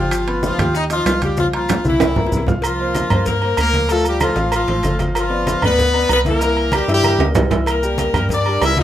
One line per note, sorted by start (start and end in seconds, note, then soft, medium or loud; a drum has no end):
0.00 0.53 G1 medium
0.00 0.41 F3 medium
0.00 0.40 F4 medium
0.00 0.22 G4 medium
0.00 0.22 G5 medium
0.00 0.22 G6 medium
0.11 high bongo medium
0.11 high conga soft
0.11 high timbale medium
0.11 claves medium
0.11 maracas medium
0.27 0.53 B3 medium
0.27 0.53 B4 medium
0.27 0.54 B5 medium
0.27 high bongo soft
0.27 high conga soft
0.27 high timbale medium
0.43 0.73 F3 medium
0.43 0.73 F4 loud
0.43 high bongo medium
0.43 high conga medium
0.43 maracas medium
0.58 1.02 D#2 loud
0.58 0.85 G4 medium
0.58 0.85 G5 medium
0.58 0.85 G6 medium
0.58 high bongo soft
0.58 high conga soft
0.58 low conga medium
0.58 high timbale medium
0.58 claves medium
0.58 maracas soft
0.75 0.83 D#4 medium
0.75 0.83 D#5 medium
0.75 high bongo medium
0.75 high conga soft
0.75 maracas medium
0.90 1.20 F3 medium
0.90 1.16 D#4 medium
0.90 1.20 F4 loud
0.90 1.16 D#5 medium
0.90 1.16 D#6 medium
0.90 high bongo soft
0.90 high conga soft
0.90 high timbale medium
0.90 maracas medium
1.06 1.79 C2 medium
1.06 high bongo soft
1.06 low bongo medium
1.06 high conga soft
1.06 high timbale medium
1.06 low timbale medium
1.06 claves medium
1.06 maracas medium
1.22 1.37 G3 medium
1.22 1.35 F4 medium
1.22 1.37 G4 medium
1.22 1.35 F5 medium
1.22 1.35 F6 medium
1.22 high conga medium
1.22 high timbale medium
1.22 maracas soft
1.37 1.50 F3 medium
1.37 1.45 F3 medium
1.37 1.51 F4 medium
1.37 1.45 F4 medium
1.37 1.51 F5 medium
1.37 high bongo medium
1.37 high conga medium
1.37 maracas medium
1.53 1.84 F3 medium
1.53 1.79 A#3 medium
1.53 1.84 F4 medium
1.53 1.79 A#4 medium
1.53 1.80 A#5 medium
1.53 high bongo soft
1.53 high timbale medium
1.69 high bongo medium
1.69 low conga medium
1.69 high timbale medium
1.69 claves medium
1.69 maracas medium
1.84 2.28 C2 loud
1.84 2.11 E3 medium
1.84 2.45 E3 medium
1.84 2.11 E4 loud
1.84 2.45 E4 medium
1.84 2.11 E5 medium
1.84 high conga medium
1.84 maracas soft
2.00 high bongo medium
2.00 low conga medium
2.00 high timbale loud
2.00 claves medium
2.00 maracas medium
2.16 2.42 A#3 medium
2.16 2.42 A#4 medium
2.16 2.42 A#5 medium
2.16 high bongo medium
2.16 low conga medium
2.27 high bongo medium
2.31 3.05 C2 medium
2.31 low conga medium
2.31 maracas medium
2.37 low bongo loud
2.47 2.60 F4 medium
2.47 2.61 F5 medium
2.47 2.61 F6 medium
2.47 low bongo loud
2.47 low conga medium
2.47 low timbale medium
2.47 maracas soft
2.62 3.24 F3 medium
2.62 3.23 F4 medium
2.62 cowbell loud
2.62 high conga soft
2.62 low agogo loud
2.62 claves medium
2.62 maracas medium
2.80 3.05 A#3 medium
2.80 3.05 A#4 medium
2.80 3.06 C5 medium
2.80 high conga soft
2.94 cowbell medium
2.94 high conga medium
2.94 low agogo medium
2.94 maracas medium
3.10 3.54 G2 loud
3.10 3.37 A#3 medium
3.10 3.37 A#4 medium
3.10 3.37 C5 medium
3.10 high conga soft
3.10 low conga medium
3.10 low agogo loud
3.10 claves medium
3.10 maracas soft
3.26 3.59 A#3 medium
3.26 3.58 A#4 medium
3.26 cowbell loud
3.26 high conga soft
3.26 low conga medium
3.26 maracas medium
3.42 3.68 A#3 medium
3.42 3.68 A#4 medium
3.42 3.68 C5 medium
3.42 high conga soft
3.42 low agogo medium
3.57 4.31 D2 medium
3.57 3.88 A#3 medium
3.57 3.88 A#4 loud
3.57 cowbell medium
3.57 high conga soft
3.57 low agogo loud
3.57 claves medium
3.57 maracas medium
3.73 3.87 F3 medium
3.73 3.87 F4 medium
3.73 3.88 F5 medium
3.73 cowbell medium
3.73 high conga medium
3.73 maracas soft
3.89 4.16 F3 medium
3.89 4.06 A3 medium
3.89 4.16 F4 medium
3.89 4.06 A4 loud
3.89 4.16 F5 medium
3.89 cowbell loud
3.89 high conga soft
3.89 low agogo medium
3.89 maracas medium
4.05 4.21 G3 medium
4.05 4.21 G4 medium
4.05 high conga soft
4.05 low agogo medium
4.05 maracas medium
4.20 4.51 F3 medium
4.20 4.35 A3 medium
4.20 4.51 F4 medium
4.20 4.35 A4 medium
4.20 4.35 C5 medium
4.20 cowbell medium
4.20 high conga medium
4.20 low agogo loud
4.20 claves medium
4.20 maracas medium
4.36 4.66 A1 medium
4.36 4.62 F3 medium
4.36 4.62 F4 medium
4.36 4.62 F5 loud
4.36 cowbell medium
4.36 high conga soft
4.36 maracas soft
4.52 4.98 F3 medium
4.52 4.98 F4 medium
4.52 cowbell loud
4.52 high conga soft
4.52 low agogo loud
4.52 claves medium
4.52 maracas medium
4.68 4.83 A1 medium
4.68 4.81 A3 medium
4.68 4.81 A4 medium
4.68 4.81 C5 medium
4.68 cowbell medium
4.68 high conga soft
4.68 low agogo medium
4.83 5.57 G1 medium
4.83 4.97 A3 medium
4.83 4.97 A4 medium
4.83 4.97 C5 medium
4.83 cowbell medium
4.83 high conga medium
4.83 low agogo medium
4.83 maracas medium
4.99 5.25 F3 medium
4.99 5.25 F4 medium
4.99 5.25 F5 medium
4.99 cowbell medium
4.99 high conga medium
4.99 low agogo medium
4.99 maracas soft
5.15 5.60 F3 medium
5.15 5.60 F4 loud
5.15 cowbell loud
5.15 high conga soft
5.15 low agogo loud
5.15 claves medium
5.15 maracas medium
5.30 5.56 B3 medium
5.30 5.56 B4 medium
5.30 5.56 D5 medium
5.30 high conga soft
5.47 cowbell medium
5.47 high conga loud
5.47 low agogo medium
5.47 maracas medium
5.62 6.06 D2 loud
5.62 5.89 B3 medium
5.62 6.11 B3 loud
5.62 5.88 B4 medium
5.62 6.11 B4 loud
5.62 5.89 D5 medium
5.62 high conga soft
5.62 low conga medium
5.62 low agogo loud
5.62 claves medium
5.62 maracas soft
5.79 cowbell loud
5.79 high conga soft
5.79 low conga medium
5.79 maracas medium
5.94 6.20 B3 medium
5.94 6.20 B4 medium
5.94 6.20 D5 medium
5.94 high conga soft
5.94 low agogo medium
6.09 6.83 C2 loud
6.09 6.18 B3 medium
6.09 6.19 B4 loud
6.09 cowbell medium
6.09 high conga soft
6.09 low agogo loud
6.09 claves medium
6.09 maracas medium
6.25 6.38 E3 medium
6.25 6.71 A#3 medium
6.25 6.38 E4 medium
6.25 6.71 A#4 loud
6.25 6.39 E5 medium
6.25 cowbell medium
6.25 high conga medium
6.25 maracas soft
6.41 6.67 E3 medium
6.41 6.67 E4 medium
6.41 6.67 E5 medium
6.41 cowbell loud
6.41 low agogo medium
6.41 maracas medium
6.56 high conga soft
6.56 low agogo medium
6.72 6.85 G3 medium
6.72 6.89 G3 medium
6.72 6.86 G4 medium
6.72 6.90 G4 loud
6.72 6.86 A#4 medium
6.72 cowbell medium
6.72 high conga medium
6.72 low agogo loud
6.72 claves medium
6.72 maracas medium
6.88 7.18 G2 medium
6.88 7.14 E3 medium
6.88 7.23 G3 medium
6.88 7.14 E4 medium
6.88 7.24 G4 loud
6.88 7.14 E5 loud
6.88 cowbell medium
6.88 high conga soft
6.88 maracas soft
7.03 cowbell loud
7.03 high conga medium
7.03 low agogo loud
7.03 claves medium
7.03 maracas medium
7.19 7.34 D2 medium
7.19 7.33 G3 medium
7.19 7.33 G4 medium
7.19 7.33 A#4 medium
7.19 cowbell medium
7.19 high conga medium
7.19 high timbale medium
7.19 low agogo medium
7.34 8.09 C2 medium
7.34 7.48 G3 medium
7.34 7.48 G4 medium
7.34 7.48 A#4 medium
7.34 cowbell medium
7.34 low conga medium
7.34 low timbale loud
7.34 low agogo medium
7.34 maracas medium
7.49 7.76 E3 medium
7.49 7.76 E4 medium
7.49 7.77 E5 medium
7.49 cowbell medium
7.49 low conga medium
7.49 low timbale medium
7.49 low agogo medium
7.49 maracas soft
7.66 8.27 A#3 medium
7.66 8.28 A#4 medium
7.66 cowbell loud
7.66 high conga soft
7.66 low agogo loud
7.66 claves medium
7.66 maracas medium
7.82 8.09 G3 medium
7.82 8.09 G4 medium
7.82 8.09 A#4 medium
7.82 high conga soft
7.82 maracas medium
7.98 cowbell medium
7.98 high conga medium
7.98 low agogo medium
7.98 maracas medium
8.14 8.58 G2 loud
8.14 8.40 G3 medium
8.14 8.40 G4 medium
8.14 8.41 A#4 medium
8.14 high conga soft
8.14 low conga medium
8.14 low agogo loud
8.14 claves medium
8.14 maracas soft
8.29 8.63 D4 medium
8.29 8.63 D5 loud
8.29 cowbell loud
8.29 high conga soft
8.29 low conga medium
8.29 maracas medium
8.46 8.72 G3 medium
8.46 8.72 G4 medium
8.46 8.72 A#4 medium
8.46 high conga soft
8.46 low agogo medium
8.62 8.83 C#2 medium
8.62 8.77 E4 medium
8.62 8.77 E5 loud
8.62 cowbell medium
8.62 high conga soft
8.62 low timbale medium
8.62 low agogo loud
8.62 claves medium
8.62 maracas medium
8.77 8.83 F3 medium
8.77 8.83 D#4 medium
8.77 8.83 F4 medium
8.77 8.83 D#5 loud
8.77 8.83 F5 medium
8.77 cowbell medium
8.77 high conga medium
8.77 maracas soft